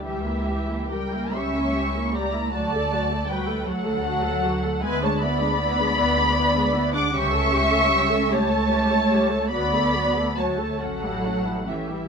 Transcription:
<<
  \new Staff \with { instrumentName = "Violin section" } { \time 6/8 \key d \major \tempo 4. = 51 e''4 g''8 cis'''4 ais''8 | a''4 g''8 fis''4. | gis''16 a''16 b''2~ b''16 d'''16 | cis'''4. a''4. |
b''4 a''8 fis''4 e''8 | }
  \new Staff \with { instrumentName = "Violin section" } { \time 6/8 \key d \major g'4 ais'8 e''4 d''8 | d''4 b'8 a'4. | b'16 cis''16 d''2~ d''16 fis''16 | e''4. cis''4. |
d''4 cis''8 a'4 g'8 | }
  \new Staff \with { instrumentName = "Viola section" } { \time 6/8 \key d \major <g g'>16 <ais e'>16 <g g'>16 <ais e'>16 <g g'>16 <ais e'>16 <g g'>16 <ais e'>16 <g g'>16 <ais e'>16 <g g'>16 <ais e'>16 | <fis fis'>16 <a a'>16 <fis fis'>16 <a a'>16 <fis fis'>16 <a a'>16 <fis fis'>16 <a a'>16 <fis fis'>16 <a a'>16 <fis fis'>16 <a a'>16 | <b e'>16 <gis d'>16 <b e'>16 <gis d'>16 <b e'>16 <gis d'>16 <b e'>16 <gis d'>16 <b e'>16 <gis d'>16 <b e'>16 <gis d'>16 | <g g'>16 <a a'>16 <g g'>16 <a a'>16 <g g'>16 <a a'>16 <g g'>16 <a a'>16 <g g'>16 <a a'>16 <g g'>16 <a a'>16 |
<fis fis'>16 <a a'>16 <fis fis'>16 <a a'>16 <fis fis'>16 <a a'>16 <a cis'>16 <g e'>16 <a cis'>16 <g e'>16 <a cis'>16 <g e'>16 | }
  \new Staff \with { instrumentName = "Cello section" } { \time 6/8 \key d \major e4 g8 cis'4 ais8 | a4 g8 fis4. | gis16 a16 b2~ b16 d'16 | cis'4. a4. |
b4 a8 fis4 e8 | }
  \new Staff \with { instrumentName = "Double bass section" } { \clef bass \time 6/8 \key d \major cis,4. cis,4. | d,4. d,4. | d,4. d,4. | cis,4. cis,4. |
d,4. a,,4. | }
>>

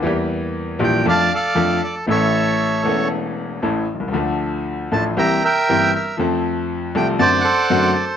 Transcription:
<<
  \new Staff \with { instrumentName = "Bandoneon" } { \time 4/4 \key d \minor \tempo 4 = 117 << { r4. g''8 a''8 f''4 d''8 | e''4. r2 r8 | r4. a''8 bes''8 g''4 e''8 | r4. g''8 a''8 fis''4 d''8 | } \\ { r2 <d'' f''>8 <a' d''>4. | <a' cis''>2 r2 | r2 <e'' g''>8 <bes' e''>4. | r2 <c'' d''>8 <a' c''>4. | } >> }
  \new Staff \with { instrumentName = "Grand piano" } { \clef bass \time 4/4 \key d \minor <e, e g bes g'>4. <bes,, bes, e g bes g'>8 <f, f a d' a'>8 r8 <f, f a d' a'>8 r8 | <a,, a, e a cis' a'>4. <e,, e, e a cis' a'>4. <a,, a, e a cis' a'>8 r32 b,,32 c,32 cis,32 | <d, d f a d' a'>4. <a,, a, f a d' a'>8 <c, c e bes c' g'>8 r8 <g,, g, e bes c' g'>8 r8 | <f, f a c' a'>4. <c, c f a c' a'>8 <fis, d fis a c' fis'>8 r8 <fis, d fis a c' fis'>8 r8 | }
>>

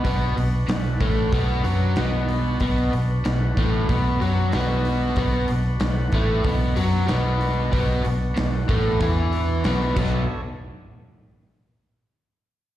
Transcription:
<<
  \new Staff \with { instrumentName = "Tonewheel organ" } { \time 4/4 \key b \minor \tempo 4 = 94 <d' fis' b'>1 | <d' fis' b'>1 | <d' fis' b'>1 | \tuplet 3/2 { <c' dis' g'>8 <b d' fis'>4~ } <b d' fis'>2~ <b d' fis'>8 <d' a' cis''>8 |
r1 | }
  \new Staff \with { instrumentName = "Overdriven electric guitar" } { \clef bass \time 4/4 \key b \minor <b, b>8 b,8 b,8 <a, a>8 <b, b>8 <fis fis'>8 <b, b>4 | <b, b>8 b,8 b,8 <a, a>8 <b, b>8 <fis fis'>8 <b, b>4 | <b, b>8 b,8 b,8 <a, a>8 <b, b>8 <fis fis'>8 <b, b>4 | <b, b>8 b,8 b,8 <a, a>8 <e e'>4 <b, b>8 <b, fis b>8 |
r1 | }
  \new Staff \with { instrumentName = "Fingered electric bass" } { \clef bass \time 4/4 \key b \minor b,,8 b,,8 b,,8 a,,8 b,,8 fis,8 b,,4 | b,,8 b,,8 b,,8 a,,8 b,,8 fis,8 b,,4 | b,,8 b,,8 b,,8 a,,8 b,,8 fis,8 b,,4 | b,,8 b,,8 b,,8 a,,8 e,4 b,,8 b,,8 |
r1 | }
  \new DrumStaff \with { instrumentName = "Drums" } \drummode { \time 4/4 <hho bd>8 hho8 <hho sn>8 <hho bd>8 <hho bd>8 hho8 <hho sn>8 hho8 | <hho bd>8 hho8 <hho sn>8 <hho bd>8 <hho bd>8 hho8 <hho sn>8 hho8 | <hho bd>8 hho8 <hho sn>8 <hho bd>8 <hho bd>8 hho8 <hho sn>8 hho8 | <hho bd>8 hho8 <hho sn>8 <hho bd>8 <hho bd>8 hho8 <hho sn>8 <cymc bd>8 |
r4 r4 r4 r4 | }
>>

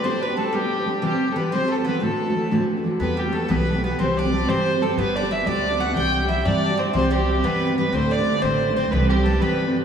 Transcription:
<<
  \new Staff \with { instrumentName = "Accordion" } { \time 6/8 \key c \lydian \tempo 4. = 122 c''8 b'8 a'8 g'4. | g'4 b'8 c''8 a'8 b'8 | a'2 r4 | b'8 g'8 a'8 b'4 b'8 |
c''8 d''4 c''4 a'8 | b'8 d''8 e''8 d''4 fis''8 | g''4. d''4. | c''8 g'4 b'4 b'8 |
c''8 d''4 c''4 c''8 | b'8 g'8 a'8 b'4 r8 | }
  \new Staff \with { instrumentName = "Fiddle" } { \time 6/8 \key c \lydian c''8 b'8 a'8 g'4. | g'8.~ g'32 a'32 b'8 c''8 a'8 b'8 | a'2 r4 | b'8 g'8 a'8 b'4 b'8 |
c''8 d''4 c''4 a'8 | b'8 d''8 e''8 d''4 fis''8 | g''4 e''8 d''4 c''8 | c''8 g'4 b'4 b'8 |
c''8 d''4 c''4 c''8 | b'8 g'4 b'4 r8 | }
  \new Staff \with { instrumentName = "Bouzouki" } { \time 6/8 \key c \lydian c'8 b8 a8 g4. | g4 b8 c'8 a8 b8 | a2 r4 | b8 g8 a8 b4 b8 |
c'8 d'4 c'4 a8 | b8 d'8 e'8 d'4 fis'8 | g'4 e'8 d'4 c'8 | c'8 g4 b4 b8 |
c'8 d'4 c'4 c'8 | b8 g8 a8 b4 r8 | }
  \new Staff \with { instrumentName = "Steel-string acoustic guitar" } { \time 6/8 \key c \lydian <g b d' g'>16 <b d' g'>8 <b d' g'>16 <g b d' g'>8 <g b d' g'>16 <b d' g'>8 <b d' g'>16 <g b d' g'>8 | <c e g c' g'>16 <g c' g'>8 <g c' g'>16 <e g c' g'>8 <c e g c' g'>16 <g c' g'>8 <g c' g'>16 <e g c' g'>8 | <d, a, e a d' fis'>16 <e a d' fis'>8 <e a d' fis'>16 <e a d' fis'>8 <d, a, e a d' fis'>16 <e a d' fis'>8 <e a d' fis'>16 <e a d' fis'>8 | <e g b g'>8. <g b g'>16 <e g b g'>16 <g b g'>16 <e g b g'>8. <g b g'>16 <e g b g'>16 <g b g'>16 |
<c e g c' g'>8. <g c' g'>16 <e g c' g'>16 <g c' g'>16 <c e g c' g'>8. <g c' g'>16 <e g c' g'>16 <g c' g'>16 | <g b d' g'>8. <b d' g'>16 <g b d' g'>16 <b d' g'>16 <g b d' g'>8. <b d' g'>16 <g b d' g'>16 <b d' g'>16 | <c e g d' g'>8. <g d' g'>16 <e g d' g'>16 <g d' g'>16 <c e g d' g'>8. <g d' g'>16 <e g d' g'>16 <g d' g'>16 | <c e g c' g'>8. <g c' g'>16 <e g c' g'>16 <g c' g'>16 <c e g c' g'>8. <g c' g'>16 <e g c' g'>16 <g c' g'>16 |
<d, a, d a d' e'>8. <d a d' e'>16 <d a d' e'>16 <d a d' e'>16 <d, a, d a d' e'>8. <d a d' e'>16 <d a d' e'>16 <d a d' e'>16 | <c e g c' g'>8. <g c' g'>16 <e g c' g'>16 <g c' g'>16 <c e g c' g'>8. <g c' g'>16 <e g c' g'>16 r16 | }
  \new Staff \with { instrumentName = "Upright bass" } { \clef bass \time 6/8 \key c \lydian r2. | r2. | r2. | e,4. b,,4. |
c,4. g,4. | g,,4. d,4. | c,4. g,4. | c,4. g,4. |
d,4. a,,4. | c,4. g,4. | }
>>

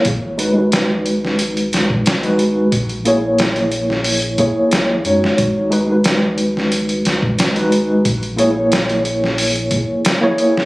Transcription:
<<
  \new Staff \with { instrumentName = "Tine electric piano" } { \time 4/4 \key gis \minor \tempo 4 = 90 r8 <gis dis' fis' b'>16 <gis dis' fis' b'>2~ <gis dis' fis' b'>8 <gis dis' fis' b'>8. | r8 <ais e' gis' cis''>16 <ais e' gis' cis''>4.~ <ais e' gis' cis''>16 <ais e' gis' cis''>4 <gis dis' fis' cis''>8~ | <gis dis' fis' cis''>8 <gis dis' fis' b'>16 <gis dis' fis' b'>2~ <gis dis' fis' b'>8 <gis dis' fis' b'>8. | r8 <ais e' gis' cis''>16 <ais e' gis' cis''>2~ <ais e' gis' cis''>8 <ais e' gis' cis''>8. | }
  \new Staff \with { instrumentName = "Sub bass" } { \clef bass \time 4/4 \key gis \minor gis,,2~ gis,,8 gis,,4. | ais,,2~ ais,,8 r8 gis,,8 fis,8 | gis,,2~ gis,,8 gis,,4. | ais,,2~ ais,,8 r4. | }
  \new DrumStaff \with { instrumentName = "Drums" } \drummode { \time 4/4 <hh bd>8 hh8 <hh sn>8 hh16 sn16 hh16 hh16 <hh sn>16 bd16 <hh sn>16 hh16 hh8 | <hh bd>16 hh16 hh8 <hh sn>16 hh16 hh16 sn16 hho16 hh16 <hh bd>8 <hh sn>8 hh16 sn16 | <hh bd>8 hh8 <hh sn>8 hh16 sn16 hh16 hh16 <hh sn>16 bd16 <hh sn>16 hh16 hh8 | <hh bd>16 hh16 hh8 <hh sn>16 hh16 hh16 sn16 hho16 hh16 <hh bd>8 <hh sn>8 hh16 sn16 | }
>>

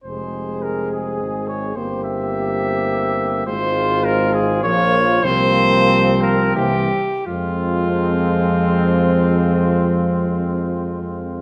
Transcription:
<<
  \new Staff \with { instrumentName = "Trumpet" } { \time 3/4 \key f \minor \tempo 4 = 96 c''4 bes'8 aes'4 des''8 | c''8 e''2~ e''8 | c''4 bes'8 aes'8 des''4 | c''4. bes'8 g'4 |
f'2.~ | f'2. | }
  \new Staff \with { instrumentName = "Trumpet" } { \time 3/4 \key f \minor aes'2. | g'2. | f'2 f'4 | c'2 c'8 r8 |
c'2.~ | c'2. | }
  \new Staff \with { instrumentName = "French horn" } { \time 3/4 \key f \minor c'2. | c'2. | c'2 bes4 | bes2 bes8 r8 |
aes2.~ | aes2. | }
  \new Staff \with { instrumentName = "Trombone" } { \clef bass \time 3/4 \key f \minor aes2. | bes2. | aes2 f4 | f2 e8 r8 |
f2.~ | f2. | }
  \new Staff \with { instrumentName = "Tuba" } { \clef bass \time 3/4 \key f \minor f,,2 aes,,4 | g,,2. | aes,,2 bes,,4 | c,2 c,8 r8 |
f,2.~ | f,2. | }
>>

